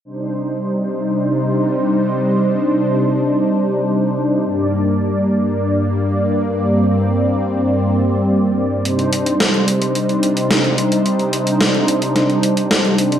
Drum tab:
HH |----------------|----------------|----------------|----------------|
SD |----------------|----------------|----------------|----------------|

HH |xxxxxxxxxxxxxxxx|xxxxxxxxxxxxxxxx|
SD |----o-------o---|----o---o---o---|